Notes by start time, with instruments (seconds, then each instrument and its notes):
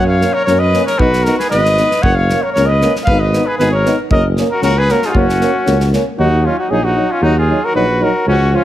Already playing: tuba F#2
0.06 trumpet C#5, cornet F5
0.20 trombone A#3, euphonium C#4, snare
0.33 trumpet A#4, cornet C#5
0.45 tuba F#2, trombone A#3, trumpet A#4, cornet C#5, snare
0.49 euphonium C#4
0.59 trumpet B4, cornet D#5
0.73 trombone A#3, euphonium C#4, snare
0.85 trumpet A#4, cornet C#5, snare
0.98 tuba B1, trombone B3, euphonium D#4, trumpet F#4, cornet B4, kick
1.13 snare
1.23 trombone B3, euphonium D#4, trumpet F#4, cornet A#4, snare
1.38 trumpet G#4, cornet B4, snare
1.50 tuba G#1, trombone B3, euphonium D#4, trumpet B4, cornet D#5, snare
1.65 snare
1.77 trombone B3, euphonium D#4, snare
1.91 snare
2.02 tuba F#1, trombone A#3, euphonium C#4, trumpet C#5, cornet F#5, kick
2.15 trumpet C#5, cornet F5
2.30 trombone A#3, euphonium C#4, snare
2.42 trumpet A#4, cornet C#5
2.53 tuba C#2, trumpet A#4, cornet C#5, snare
2.57 trombone A#3, euphonium C#4
2.66 trumpet B4, cornet D#5
2.81 trombone A#3, euphonium C#4, snare
2.96 snare
3.04 trombone B3, trumpet B4, cornet F5, kick
3.09 tuba G#1, euphonium D#4
3.19 trumpet B4, cornet D#5
3.33 trombone B3, euphonium D#4, snare
3.46 trumpet G#4, cornet B4
3.58 tuba G#1, trombone B3, euphonium D#4, trumpet G#4, cornet B4, snare
3.72 trumpet A#4, cornet C#5
3.85 trombone B3, euphonium D#4, snare
4.11 tuba F#1, trombone A#3, euphonium C#4, trumpet A#4, cornet D#5, kick
4.36 trombone A#3, euphonium C#4, snare
4.51 trumpet F#4, cornet A#4
4.62 tuba C#2, trombone A#3, euphonium C#4, trumpet F#4, cornet A#4, snare
4.78 trumpet G#4, cornet B4
4.89 trombone A#3, euphonium C#4, trumpet F#4, cornet A#4, snare
5.02 trumpet D#4 F4, cornet G#4, snare
5.08 trumpet F4, cornet F#4 G#4
5.14 tuba F#1, trombone A#3, euphonium C#4, trumpet C#4, cornet F#4, kick
5.29 snare
5.41 trombone A#3, euphonium C#4, snare
5.66 tuba C#2, trombone A#3, euphonium C#4, snare
5.80 snare
5.92 trombone A#3, euphonium C#4, snare
6.18 tuba D#2, trombone F#3, euphonium D#4, trumpet D#4, cornet F#4
6.44 trombone F#3, trumpet C#4, euphonium D#4, cornet F4
6.58 trumpet D#4, cornet F#4
6.69 tuba A#1, trombone F#3, euphonium D#4, trumpet D#4, cornet G#4
6.84 trumpet D#4, cornet F#4
6.95 trombone F#3, euphonium D#4
7.11 trumpet C#4, cornet F4
7.22 tuba D#2, trombone F#3, euphonium D#4, trumpet D#4, cornet F#4
7.38 trumpet F4, cornet G#4
7.48 trombone F#3, euphonium D#4
7.65 trumpet F#4, cornet A#4
7.74 tuba A#1, trombone F#3, euphonium D#4, trumpet F#4, cornet B4
8.00 trombone F#3, euphonium D#4, trumpet F#4, cornet A#4
8.26 tuba C#2, trombone F3, trumpet C#4, euphonium C#4, cornet F#4
8.52 trombone F3, euphonium C#4, trumpet C#4, cornet F4